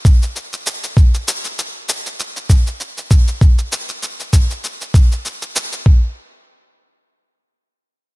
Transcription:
0.05 kick, shaker
0.22 shaker
0.36 shaker
0.53 shaker
0.66 shaker
0.84 shaker
0.97 kick, shaker
1.14 shaker
1.28 shaker
1.45 shaker
1.59 shaker
1.89 shaker
2.06 shaker
2.20 shaker
2.37 shaker
2.50 kick, shaker
2.67 shaker
2.80 shaker
2.97 shaker
3.11 kick, shaker
3.28 shaker
3.41 kick, shaker
3.58 shaker
3.72 shaker
3.89 shaker
4.03 shaker
4.20 shaker
4.33 kick, shaker
4.50 shaker
4.64 shaker
4.81 shaker
4.94 kick, shaker
5.12 shaker
5.25 shaker
5.42 shaker
5.56 shaker
5.73 shaker
5.86 kick

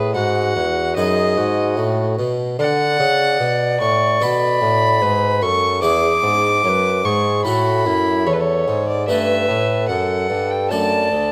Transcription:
Already playing: A2 G#4 B4
0.14 G#2 F#4 F#5
0.56 E2
0.96 F#2 D#4 G#4 B4 D#5
1.37 G#2 F#4
1.77 A2
2.18 B2
2.59 D3 D5 F#5
2.99 C#3
3.40 B2
3.80 A2 C#6
4.21 B2 B3 F#4 A4 B5
4.61 A2
5.01 G#2 B4
5.42 F#2 A4 C#6
5.82 E2 B3 E4 G#4 D6
6.23 G#2
6.63 F#2 C#5
6.69 B4
7.04 G#2 G#4 C#6
7.45 A2 A3 E4 F#4 A4 B5
7.85 F#2 E4
8.26 E2 A4 C#5
8.33 B4
8.40 C#5
8.67 G#2
8.88 D5
9.07 G2 A3 C#4 A4 B4 E5
9.48 A2
9.89 F#2 A4 F#5
10.29 G2
10.51 G5
10.70 F#2 A3 D4 A4 D5 A5
11.11 D2

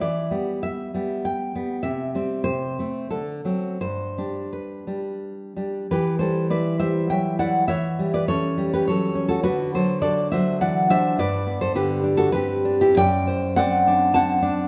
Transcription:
0.01 E3 D5
0.31 G3 B3
0.63 E5
0.94 G3 B3
1.25 G5
1.55 G3 B3
1.83 C3 E5
2.15 G3 C4
2.44 C3 C5
2.79 A3 C4
3.10 D3 A4
3.45 F#3 C4
3.81 G2 C5
4.18 G3 D4
4.53 B4
4.87 G3 D4
5.56 G3 D4
5.91 E3 G4 B4
6.19 G3 A4 C5
6.50 E4 B4 D5
6.79 G3 C5 E5
7.10 F#3 E5 G5
7.39 E4 D5 F#5
7.68 E3 C#5 E5
7.99 G3
8.14 B4 D5
8.28 C#4 A4 C#5
8.58 G3
8.73 G4 B4
8.88 F#3 A4 C#5
9.15 C#4
9.29 F#4 A4
9.43 D3 F#4 B4
9.74 F#3 A4 C5
10.02 D4 A4 D5
10.32 F#3 C5 E5
10.61 E3 D5 F#5
10.90 D4 C5 E5
11.18 G2 B4 D5
11.47 B3
11.61 A4 C5
11.75 D3 G4 B4
12.03 D4
12.17 F#4 A4
12.32 C4 G4 B4
12.65 D4
12.81 E4 G4
12.96 F#2 D5 G5
13.27 C5
13.56 C4 D5 F#5
13.87 D4
14.13 C4 F#5 A5
14.42 D4

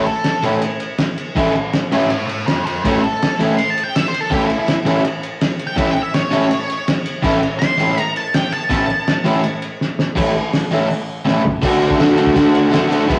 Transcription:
0.05 A4, ride
0.24 snare, ride
0.43 A2 E3 A3 C#4 E4, ride
0.62 ride
0.80 ride
0.98 snare, ride
1.18 ride
1.35 A2 E3 A3 C#4 E4, kick, crash
1.55 ride
1.73 snare, ride
1.92 A2 E3 A3 C#4 E4 C#5 E5, ride
2.10 C#5 E5, ride
2.27 C#5 E5, ride
2.46 A4 C5, snare, ride
2.65 A4 C5, ride
2.84 A2 E3 A3 C#4 E4 A4 C5, kick, ride
3.03 A4, ride
3.22 snare, ride
3.40 A2 E3 A3 C#4 E4, ride
3.57 C6, ride
3.70 A5
3.78 ride
3.84 G5
3.95 E5, snare, ride
4.08 C5
4.14 ride
4.20 A4
4.30 A2 E3 A3 C#4 E4 G4, kick, crash
4.47 E4, ride
4.59 E4
4.68 snare, ride
4.85 A2 E3 A3 C#4 E4, ride
5.05 ride
5.23 ride
5.41 snare, ride
5.59 ride
5.67 G5
5.76 A2 E3 A3 C#4 E4 E5, kick, ride
5.91 G5
5.96 ride
6.03 E5
6.14 C#5, snare, ride
6.31 A2 E3 A3 C#4 E4, ride
6.51 ride
6.70 ride
6.88 snare, ride
7.06 ride
7.22 A2 E3 A3 C#4 E4, kick, crash
7.43 ride
7.59 C6, snare, ride
7.78 A2 E3 A3 C#4 E4, ride
7.98 A#5, ride
8.16 A5, ride
8.34 G5, snare, ride
8.52 A5, ride
8.70 A2 E3 A3 C#4 E4, kick, ride
8.90 ride
9.08 snare, ride
9.25 A2 E3 A3 C#4 E4, ride
9.44 ride
9.62 ride
9.81 snare
9.99 snare
10.16 A2 E3 A3 C#4 E4, kick, crash
10.53 snare, open hi-hat
10.71 A2 E3 A3 C#4 E4
10.90 open hi-hat
11.25 A2 E3 A3 C#4 E4, snare
11.45 floor tom
11.62 D3 A3 D4 F#4, kick, crash
11.82 ride
11.91 kick
11.97 D3 A3 D4 F#4, snare, ride
12.16 A3 D4 F#4, ride
12.27 kick
12.34 D3 A3 D4 F#4, kick, ride
12.55 ride
12.71 D3 A3 D4 F#4, snare, ride
12.89 A3 D4 F#4, ride
13.07 E3 G#3 B3 E4, kick, ride

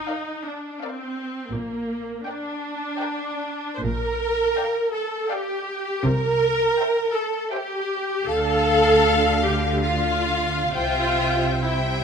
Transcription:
Already playing: D#4
0.08 A#4 D5 F5
0.46 D4
0.81 C4 A#4 D5 F5
1.53 A#1 A#2 A#3
2.25 D4 A#4 D5 G5
2.98 A#4 D5 G5
3.76 C5
3.82 A#1 A#2 A#4
4.58 D5 F5 G5
4.94 A4
5.30 G4 D5 F5 G5
6.04 C2 C3 A#4
6.80 C5 E5 G5
7.15 A4
7.53 G4 C5 E5 G5
8.26 D2 D3 A4 F5
9.44 G4
9.84 F4 F5
10.74 C2 C3 F4 C5 E5 G5
11.64 E4 C5 E5 G5

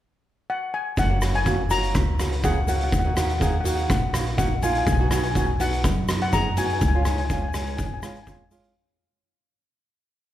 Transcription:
0.50 F#5
0.74 G#5
0.97 F#1 F#5, kick, closed hi-hat, shaker
1.10 A#3 C#4 F#4
1.21 A#3 C#4 F#4, cross-stick, closed hi-hat, shaker
1.34 G#5, closed hi-hat
1.46 A#3 C#4 F#4, kick, closed hi-hat, shaker
1.70 A#3 C#4 F#4 A#5, closed hi-hat, shaker
1.83 closed hi-hat, shaker
1.95 C#2, kick, cross-stick, closed hi-hat, shaker
2.19 A#3 C#4 F#4, cross-stick, closed hi-hat, shaker
2.33 closed hi-hat
2.43 A#3 C#4 G#4 F#5, kick, closed hi-hat, shaker
2.67 A#3 C#4 F#4 F#5, closed hi-hat, shaker
2.76 F#5
2.81 F#5, closed hi-hat
2.92 D#2 F#5, kick, closed hi-hat, shaker
2.99 F#5
3.04 A#3 D#4 F#4 F#5
3.15 A#3 D#4 F#4 F#5, cross-stick, closed hi-hat, shaker
3.23 F#5
3.30 F#5, closed hi-hat, shaker
3.38 A#3 D#4 G#4 F#5, kick, closed hi-hat, shaker
3.45 F#5
3.53 F#5
3.61 A#3 F#5
3.65 D#4 F#4 F#5, closed hi-hat, shaker
3.75 F#5, closed hi-hat, shaker
3.83 F#5
3.90 A#1 F#5, kick, cross-stick, closed hi-hat, shaker
3.99 F#5
4.13 A#3 D#4 F#4, cross-stick, closed hi-hat, shaker
4.27 closed hi-hat
4.38 A#3 D#4 F#4 F#5, kick, closed hi-hat, shaker
4.62 A#3 D#4 F4 G#5, closed hi-hat, shaker
4.72 G#5, closed hi-hat
4.78 G#5
4.86 B1 G#5, kick, closed hi-hat, shaker
4.92 G#5
4.99 B3 D#4 F#4 G#5
5.08 B3 D#4 F#4 G#5, cross-stick, closed hi-hat, shaker
5.16 G#5
5.23 G#5, closed hi-hat
5.31 B3 G#5, kick, closed hi-hat
5.36 D#4 F#4 G#5, shaker
5.47 G#5
5.60 B3 D#4 F#4 F#5, closed hi-hat, shaker
5.73 closed hi-hat, shaker
5.84 F#2, kick, cross-stick, closed hi-hat, shaker
6.08 B3 D#4 F#4, cross-stick, closed hi-hat, shaker
6.21 F#5, closed hi-hat
6.33 B3 D#4 G#4 A#5, kick, closed hi-hat, shaker
6.57 B3 D#4 F#4 G#5, closed hi-hat, shaker
6.66 G#5, closed hi-hat
6.73 G#5
6.79 C#2 G#5, kick, closed hi-hat, shaker
6.88 G#5
6.94 G#3 C#4 F4 G#5
7.03 G#3 C#4 G#5, cross-stick, closed hi-hat, shaker
7.07 D#4 G#5
7.18 G#5, closed hi-hat
7.26 G#5
7.30 G#3 C#4 F4 G#5, kick, closed hi-hat, shaker
7.42 G#5
7.48 G#5
7.54 G#3 C#4 D#4 G#5, cross-stick, closed hi-hat, shaker
7.63 G#5, closed hi-hat, shaker
7.70 G#5
7.77 G#1 G#5, kick, closed hi-hat, shaker
7.86 G#5
7.94 G#5
8.00 G#3 C#4 F4 G#5, cross-stick, closed hi-hat, shaker
8.07 G#5
8.16 G#5, closed hi-hat
8.23 G#3 G#5, kick, shaker
8.27 C#4 F4, closed hi-hat
8.32 G#5
8.51 G#3 C#4 F4, closed hi-hat, shaker
8.64 closed hi-hat

